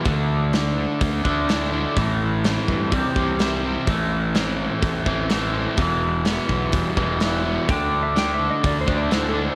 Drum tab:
HH |o-o-o-o-|o-o-o-o-|o-o-o-o-|o-o-o-o-|
SD |--o---o-|--o---o-|--o---o-|--o---o-|
BD |o---oo--|o--ooo--|o---oo--|o--ooo--|

HH |o-o-o-o-|
SD |--o---o-|
BD |o---oo--|